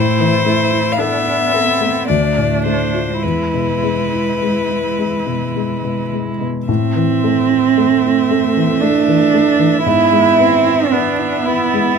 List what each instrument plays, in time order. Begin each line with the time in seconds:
Already playing: grand piano A2, cello A3, viola E4, violin C5
0.20 grand piano E3
0.46 grand piano A3, cello A3
0.71 grand piano E4
0.92 violin F5
0.98 cello B3, viola D4, grand piano A4, violin E5
1.26 grand piano E4
1.53 viola C4, grand piano A4
1.81 grand piano A3
2.08 grand piano D2, cello A3, viola D4, violin D5
2.38 grand piano A2
2.65 grand piano A3, violin C5
2.94 grand piano F4
3.20 grand piano E2, cello G#3, viola E4, violin B4
3.54 grand piano B2
3.83 grand piano G#3
4.13 grand piano E4
4.42 grand piano G#3
4.70 grand piano E4
4.99 grand piano G#3
5.26 grand piano B2
5.56 grand piano G#3
5.84 grand piano B2
6.13 grand piano G#3
6.41 grand piano B2
6.68 grand piano A2, cello C4, violin E5
6.96 grand piano E3
7.24 grand piano A3
7.50 grand piano E4
7.77 viola A3, grand piano A3
8.04 grand piano E4
8.31 grand piano A3
8.57 grand piano E3
8.81 grand piano A3, cello D4
9.08 grand piano E3
9.34 grand piano A3
9.59 grand piano E3
9.84 grand piano G#2, viola B3, cello E4
10.12 grand piano G#3
10.38 grand piano B3, viola C4
10.67 grand piano E4
10.91 cello B3, grand piano B3, viola D4
11.19 grand piano E4
11.45 grand piano B3, viola E4
11.73 grand piano G#3